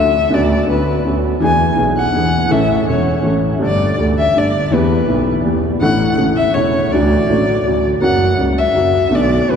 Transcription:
0.00 0.29 D2 medium
0.00 0.30 D2 soft
0.00 0.28 D3 soft
0.00 0.29 F#3 soft
0.00 0.29 A3 soft
0.00 0.30 D4 soft
0.00 0.31 A4 soft
0.00 0.35 E5 loud
0.30 0.66 D2 medium
0.30 0.67 D2 medium
0.30 0.67 C#3 soft
0.30 0.65 D3 medium
0.30 0.66 B3 medium
0.30 0.68 F#4 medium
0.34 0.69 D5 medium
0.66 1.03 D2 soft
0.66 1.03 D2 medium
0.66 1.02 D3 soft
0.66 1.03 B3 soft
0.66 1.03 C#4 soft
0.66 1.04 F#4 soft
0.66 1.03 B4 medium
1.05 1.40 D2 medium
1.05 1.40 D2 soft
1.05 1.40 D3 soft
1.05 1.40 B3 soft
1.05 1.41 C#4 soft
1.05 1.41 F#4 soft
1.40 1.76 E2 medium
1.40 1.77 E2 medium
1.40 1.74 E3 medium
1.40 1.75 B3 medium
1.40 1.77 D4 medium
1.40 1.78 G#4 medium
1.40 1.76 G#5 medium
1.75 2.13 B1 soft
1.75 2.13 B1 medium
1.75 2.13 B2 soft
1.75 2.11 E3 soft
1.75 2.12 B3 soft
1.75 2.13 D4 soft
1.75 2.13 G#4 soft
1.98 2.52 F#5 medium
2.12 2.49 E2 soft
2.12 2.50 E2 medium
2.12 2.14 E3 soft
2.12 2.47 E3 soft
2.12 2.49 B3 soft
2.12 2.50 D4 soft
2.12 2.50 G#4 soft
2.49 2.86 A1 medium
2.49 2.86 A2 medium
2.49 2.84 E3 medium
2.49 2.86 A3 medium
2.49 2.86 C#4 soft
2.49 2.88 E5 medium
2.53 2.87 A4 medium
2.86 3.23 E1 soft
2.86 3.23 E1 medium
2.86 3.23 E2 soft
2.86 3.21 E3 soft
2.86 3.22 A3 soft
2.86 3.23 C#4 soft
2.86 3.24 A4 soft
2.86 3.23 C#5 medium
3.22 3.60 A1 soft
3.22 3.60 A1 medium
3.22 3.60 A2 soft
3.22 3.59 E3 soft
3.22 3.58 A3 soft
3.22 3.60 C#4 soft
3.22 3.61 A4 soft
3.58 3.96 G1 medium
3.58 3.97 G1 medium
3.58 3.96 G2 medium
3.58 3.95 G3 medium
3.58 3.96 A3 soft
3.58 3.96 D4 medium
3.62 3.97 A4 medium
3.62 3.98 D5 medium
3.97 4.34 D2 soft
3.97 4.34 D2 medium
3.97 4.34 D3 soft
3.97 4.32 G3 soft
3.97 4.33 A3 soft
3.97 4.34 D4 soft
4.01 4.35 A4 soft
4.18 4.40 E5 medium
4.34 4.70 G1 medium
4.34 4.70 G1 soft
4.34 4.70 G2 soft
4.34 4.69 G3 soft
4.34 4.70 A3 soft
4.34 4.71 D4 soft
4.38 4.71 A4 soft
4.38 4.75 D5 medium
4.70 5.06 E2 medium
4.70 5.07 E2 medium
4.70 5.05 E3 medium
4.70 5.06 G3 medium
4.70 5.07 B3 medium
4.70 5.28 B4 medium
4.75 5.08 G4 medium
5.06 5.43 B1 medium
5.06 5.43 B1 soft
5.06 5.43 B2 soft
5.06 5.42 E3 soft
5.06 5.43 G3 soft
5.06 5.44 B3 soft
5.11 5.44 G4 soft
5.44 5.80 E2 medium
5.44 5.80 E2 soft
5.44 5.80 E3 soft
5.44 5.80 G3 soft
5.44 5.80 B3 soft
5.44 5.81 G4 soft
5.80 6.16 A1 medium
5.80 6.16 A2 medium
5.80 6.15 D3 medium
5.80 6.16 E3 medium
5.80 6.17 A3 medium
5.80 6.15 F#5 loud
5.84 6.17 E4 medium
6.16 6.52 A1 medium
6.16 6.53 A1 soft
6.16 6.53 A2 soft
6.16 6.52 C#3 soft
6.16 6.53 E3 soft
6.16 6.53 A3 soft
6.16 6.54 E4 soft
6.36 6.55 E5 medium
6.53 6.89 E1 medium
6.53 6.90 E1 soft
6.53 6.90 E2 soft
6.53 6.88 C#3 soft
6.53 6.89 E3 soft
6.53 6.90 A3 soft
6.53 6.94 C#5 medium
6.58 6.91 E4 soft
6.91 7.26 D2 medium
6.91 7.27 D2 medium
6.91 7.26 D3 medium
6.91 7.26 F#3 medium
6.91 7.27 A3 medium
6.91 7.27 F#4 medium
6.91 7.83 D5 medium
7.28 7.62 A1 medium
7.28 7.64 A1 soft
7.28 7.63 A2 soft
7.28 7.62 D3 soft
7.28 7.63 F#3 soft
7.28 7.64 A3 soft
7.32 7.65 F#4 soft
7.65 7.99 D2 medium
7.65 8.00 D2 soft
7.65 8.00 D3 soft
7.65 8.00 F#3 soft
7.65 8.00 A3 soft
7.65 8.01 F#4 soft
8.00 8.37 F#1 medium
8.00 8.37 F#2 medium
8.00 8.36 C#3 medium
8.00 8.37 F#3 medium
8.00 8.37 A#3 soft
8.00 8.38 F#4 medium
8.00 8.36 F#5 medium
8.37 8.73 C#2 medium
8.37 8.74 C#2 soft
8.37 8.72 C#3 soft
8.37 8.73 F#3 soft
8.37 8.74 A#3 soft
8.37 8.74 F#4 soft
8.59 9.17 E5 medium
8.74 9.09 F#1 medium
8.74 9.10 F#2 soft
8.74 9.09 C#3 soft
8.74 9.10 F#3 soft
8.74 9.10 A#3 soft
8.74 9.11 F#4 soft
9.09 9.46 B1 medium
9.09 9.46 B2 medium
9.09 9.45 D3 medium
9.09 9.46 A3 medium
9.09 9.47 B3 medium
9.14 9.47 F#4 medium
9.14 9.52 D5 medium
9.47 9.56 F#1 soft
9.47 9.56 F#1 medium
9.47 9.56 F#2 soft
9.47 9.56 D3 soft
9.47 9.56 A3 soft
9.47 9.56 B3 soft
9.47 9.56 F#4 soft
9.47 9.56 B4 medium

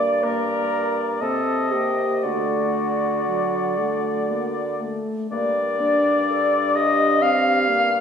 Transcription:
0.00 1.17 G2 medium
0.00 0.20 A#3 medium
0.00 0.19 D5 medium
0.00 0.25 D5 medium
0.00 0.25 D6 medium
0.23 1.23 A#3 soft
0.23 1.04 A#4 medium
0.23 1.22 D5 soft
0.23 1.23 A#5 medium
1.21 2.26 C3 soft
1.21 1.74 C4 soft
1.21 1.73 A4 medium
1.21 2.25 D#5 medium
1.21 1.72 A5 soft
1.72 2.24 A#3 soft
1.72 2.26 G4 medium
1.72 2.25 G5 soft
2.24 4.99 D3 soft
2.24 3.16 A3 soft
2.24 4.83 F#4 medium
2.24 4.99 D5 soft
2.24 4.82 F#5 soft
3.29 3.81 F#3 soft
3.79 4.30 A3 soft
4.30 4.82 A#3 soft
4.81 5.30 A3 soft
5.31 8.01 G2 medium
5.31 5.82 A#3 soft
5.31 6.31 A#4 soft
5.31 6.78 D5 medium
5.31 6.72 D5 medium
5.80 7.24 D4 soft
6.29 6.78 A4 soft
6.76 8.01 G4 medium
6.76 7.24 D#5 medium
7.22 7.70 C4 medium
7.22 8.01 F5 medium
7.68 8.01 A#3 medium

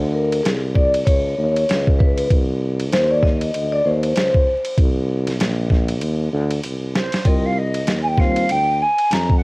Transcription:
0.00 0.42 D2 loud
0.13 0.45 A#4 medium
0.32 ride medium
0.43 1.04 C2 medium
0.43 0.58 G#4 medium
0.43 snare loud
0.43 hi-hat pedal medium
0.43 ride medium
0.75 0.89 D5 medium
0.75 kick medium
0.94 ride medium
1.05 1.36 C#2 medium
1.05 2.02 C#5 medium
1.05 kick medium
1.05 ride medium
1.38 1.67 D#2 loud
1.56 ride medium
1.69 2.28 C#2 loud
1.69 snare loud
1.69 hi-hat pedal medium
1.69 ride medium
1.87 kick medium
1.99 2.28 B4 medium
1.99 kick loud
2.17 ride medium
2.30 2.94 C2 loud
2.30 kick loud
2.30 ride medium
2.80 ride medium
2.92 3.51 D#2 loud
2.92 3.11 C5 medium
2.92 snare loud
2.92 hi-hat pedal medium
2.92 ride medium
3.11 3.22 D5 loud
3.23 3.74 D#5 loud
3.23 kick medium
3.23 snare soft
3.41 ride medium
3.54 3.84 D2 medium
3.54 ride medium
3.72 3.86 D5 loud
3.85 4.15 D#2 loud
3.85 4.74 C5 medium
4.03 ride soft
4.16 4.50 C#2 medium
4.16 snare loud
4.16 hi-hat pedal medium
4.16 ride medium
4.34 kick loud
4.65 ride medium
4.78 5.41 C2 loud
4.78 kick loud
4.78 ride medium
5.27 snare soft
5.27 ride medium
5.40 6.03 A#1 loud
5.40 snare loud
5.40 hi-hat pedal soft
5.40 ride medium
5.70 kick medium
5.70 snare soft
5.88 ride medium
6.01 6.31 D#2 loud
6.01 ride medium
6.33 6.62 D2 loud
6.51 ride medium
6.64 7.10 C2 medium
6.64 hi-hat pedal soft
6.64 ride medium
6.95 7.28 C5 medium
6.95 snare loud
7.12 7.18 C2 soft
7.12 snare loud
7.12 ride medium
7.25 7.89 C2 medium
7.25 7.48 G3 medium
7.25 7.49 C4 medium
7.25 7.49 F4 medium
7.25 7.49 A#4 medium
7.25 7.47 D#5 medium
7.25 kick loud
7.25 ride medium
7.45 7.59 F5 medium
7.58 8.02 D#5 medium
7.74 ride medium
7.87 8.46 D#2 medium
7.87 snare loud
7.87 hi-hat pedal soft
7.87 ride medium
8.02 8.09 G#5 medium
8.07 8.21 G5 medium
8.18 8.41 G3 medium
8.18 8.41 C4 medium
8.18 8.42 F4 medium
8.18 8.42 C5 medium
8.18 8.52 F5 medium
8.18 kick medium
8.18 snare soft
8.36 ride medium
8.49 8.83 D2 medium
8.49 8.83 G5 loud
8.49 ride medium
8.82 9.14 G#5 medium
8.98 ride soft
9.11 9.43 F2 medium
9.11 9.36 A#5 medium
9.11 snare loud
9.11 hi-hat pedal medium
9.11 ride medium
9.30 kick medium
9.36 9.43 F#5 medium

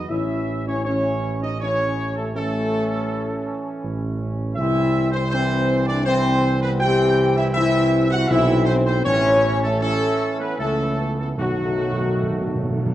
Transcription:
0.08 3.52 A1 medium
0.08 0.85 E3 medium
0.08 0.82 C#4 medium
0.08 0.62 E4 medium
0.08 0.66 E5 medium
0.67 0.84 C#4 medium
0.67 0.83 C#5 medium
0.85 1.57 E3 medium
0.85 1.38 C#4 medium
0.85 1.57 C#4 medium
0.85 1.37 C#5 loud
1.42 1.51 D#4 medium
1.42 1.59 D#5 medium
1.60 2.18 E3 medium
1.60 2.18 C#4 medium
1.60 2.13 C#4 medium
1.60 2.12 C#5 loud
2.16 2.34 A3 medium
2.16 2.24 A4 medium
2.35 4.54 E3 medium
2.35 3.80 A3 loud
2.35 4.54 C#4 medium
2.35 3.80 A4 loud
3.84 4.59 A1 medium
4.55 8.30 C2 medium
4.55 5.28 E3 medium
4.55 5.28 C4 medium
4.55 5.08 E5 loud
4.60 5.11 E4 loud
5.12 5.22 C4 loud
5.12 5.28 C5 loud
5.29 6.02 E3 loud
5.29 6.03 C4 medium
5.29 5.84 C4 loud
5.29 5.82 C5 loud
5.87 6.05 D4 loud
5.87 6.04 D5 loud
6.05 6.77 E3 medium
6.05 6.58 C4 loud
6.05 6.77 C4 loud
6.05 6.57 C5 loud
6.62 6.81 B3 loud
6.62 6.70 B4 loud
6.80 7.52 E3 loud
6.80 7.52 C4 medium
6.80 7.37 G4 loud
6.80 7.32 G5 loud
7.36 7.54 E4 loud
7.36 7.45 E5 loud
7.53 8.27 E3 loud
7.53 8.26 C4 loud
7.53 8.08 E4 loud
7.53 8.07 E5 loud
8.11 8.29 F#4 loud
8.11 8.29 F#5 loud
8.28 9.02 B1 loud
8.28 9.01 E3 loud
8.28 9.01 C4 loud
8.28 8.66 E4 loud
8.28 8.67 E5 loud
8.65 8.74 C5 loud
8.69 8.86 C4 loud
8.85 9.03 C5 loud
8.89 9.06 C4 loud
9.04 10.26 A1 medium
9.04 9.63 E3 loud
9.04 9.63 C#4 medium
9.04 9.59 C#4 loud
9.04 9.58 C#5 loud
9.62 9.81 A3 medium
9.62 9.79 A4 loud
9.80 10.54 E3 medium
9.80 10.54 C#4 medium
9.80 10.35 A4 loud
9.85 10.37 A3 loud
10.39 10.59 B3 medium
10.39 10.59 B4 loud
10.58 11.34 C#2 medium
10.58 11.33 E3 medium
10.58 11.14 A3 loud
10.58 10.95 C#4 medium
10.58 11.13 A4 loud
10.98 11.38 B3 medium
11.18 11.27 A3 medium
11.18 11.27 A4 medium
11.37 12.94 B1 medium
11.37 11.45 B2 soft
11.37 12.94 D#3 medium
11.37 12.94 F#3 loud
11.37 12.94 A3 medium
11.37 12.93 F#4 loud
11.46 11.52 B2 soft
11.53 11.60 B2 soft
11.61 11.67 B2 soft
11.69 11.75 B2 soft
11.76 11.83 B2 soft
11.84 11.90 B2 soft
11.92 11.99 B2 medium
12.00 12.06 B2 soft
12.07 12.14 B2 medium
12.15 12.22 B2 medium
12.23 12.30 B2 medium
12.31 12.38 B2 medium
12.39 12.46 B2 medium
12.47 12.54 B2 medium
12.55 12.62 B2 medium
12.63 12.69 B2 medium
12.70 12.77 B2 medium
12.78 12.85 B2 medium
12.86 12.93 B2 medium

